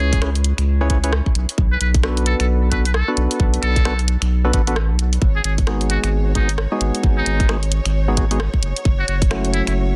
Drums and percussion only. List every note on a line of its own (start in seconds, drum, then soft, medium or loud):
0.13 kick loud
0.13 closed hi-hat medium
0.22 finger snap medium
0.22 cross-stick loud
0.35 closed hi-hat soft
0.44 closed hi-hat medium
0.58 finger snap soft
0.58 closed hi-hat medium
0.90 kick loud
0.90 closed hi-hat loud
1.04 closed hi-hat medium
1.13 cross-stick loud
1.26 kick medium
1.35 closed hi-hat medium
1.49 closed hi-hat medium
1.58 kick loud
1.81 closed hi-hat loud
1.94 kick loud
1.94 closed hi-hat medium
2.03 finger snap medium
2.03 cross-stick loud
2.17 closed hi-hat soft
2.26 closed hi-hat loud
2.40 finger snap soft
2.40 closed hi-hat medium
2.71 kick medium
2.71 closed hi-hat loud
2.85 closed hi-hat medium
2.94 cross-stick loud
3.17 closed hi-hat medium
3.31 closed hi-hat medium
3.40 kick loud
3.54 closed hi-hat soft
3.63 finger snap soft
3.63 closed hi-hat loud
3.76 kick loud
3.76 closed hi-hat medium
3.85 finger snap medium
3.85 cross-stick loud
3.99 closed hi-hat soft
4.08 closed hi-hat loud
4.22 finger snap medium
4.22 closed hi-hat medium
4.53 kick loud
4.53 closed hi-hat loud
4.67 closed hi-hat medium
4.76 cross-stick loud
4.99 closed hi-hat loud
5.13 closed hi-hat medium
5.22 kick loud
5.44 closed hi-hat loud
5.58 kick loud
5.58 closed hi-hat medium
5.67 finger snap medium
5.67 cross-stick loud
5.81 closed hi-hat soft
5.90 closed hi-hat loud
6.04 finger snap medium
6.04 closed hi-hat medium
6.35 kick medium
6.35 closed hi-hat loud
6.49 closed hi-hat medium
6.58 cross-stick loud
6.81 closed hi-hat medium
6.95 closed hi-hat medium
7.03 kick loud
7.26 closed hi-hat loud
7.40 kick loud
7.40 closed hi-hat medium
7.49 finger snap medium
7.49 cross-stick loud
7.63 closed hi-hat soft
7.72 closed hi-hat medium
7.85 finger snap medium
7.85 closed hi-hat medium
8.17 kick loud
8.17 closed hi-hat loud
8.31 closed hi-hat medium
8.40 cross-stick loud
8.54 kick medium
8.63 closed hi-hat medium
8.76 closed hi-hat medium
8.85 kick loud
9.08 closed hi-hat loud
9.22 kick loud
9.22 closed hi-hat medium
9.31 finger snap medium
9.31 cross-stick loud
9.45 closed hi-hat soft
9.54 closed hi-hat medium
9.67 finger snap medium
9.67 closed hi-hat medium